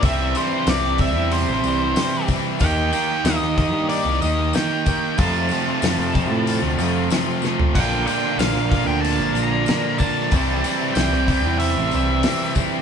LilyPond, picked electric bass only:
\new Staff \with { instrumentName = "Picked electric bass" } { \clef bass \time 4/4 \key c \mixolydian \tempo 4 = 93 c,8 r8 c,16 c,8 e,8 a,,16 c,8 r4 | ees,8 r8 ees,16 ees,8 g,8 c,16 ees,8 r4 | f,8 r8 f,16 f,8 a,8 d,16 f,8 r4 | bes,,8 r8 bes,,16 bes,,8 d,8 g,,16 bes,,8 r4 |
c,8 r8 c,16 c,8 e,8 a,,16 c,8 r4 | }